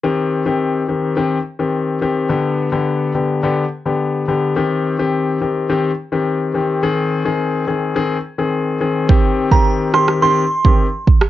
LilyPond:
<<
  \new Staff \with { instrumentName = "Synth bell" } { \time 4/4 \key c \minor \tempo 4 = 106 r1 | r1 | r1 | r1 |
r8. bes''16 r8 c'''16 r16 c'''8. r4 r16 | }
  \new Staff \with { instrumentName = "Grand piano" } { \time 4/4 \key c \minor <ees c' g'>8. <ees c' g'>8. <ees c' g'>8 <ees c' g'>16 r8 <ees c' g'>8. <ees c' g'>8 | <d b g'>8. <d b g'>8. <d b g'>8 <d b g'>16 r8 <d b g'>8. <d b g'>8 | <ees c' g'>8. <ees c' g'>8. <ees c' g'>8 <ees c' g'>16 r8 <ees c' g'>8. <ees c' g'>8 | <ees c' aes'>8. <ees c' aes'>8. <ees c' aes'>8 <ees c' aes'>16 r8 <ees c' aes'>8. <ees c' aes'>8 |
<ees c' g'>8. <ees c' g'>8. <ees c' g'>8 <ees c' g'>16 r8 <ees c' g'>16 r4 | }
  \new DrumStaff \with { instrumentName = "Drums" } \drummode { \time 4/4 r4 r4 r4 r4 | r4 r4 r4 r4 | r4 r4 r4 r4 | r4 r4 r4 r4 |
bd8. bd16 r8 ss16 ss16 r8. bd16 r8 bd16 ss16 | }
>>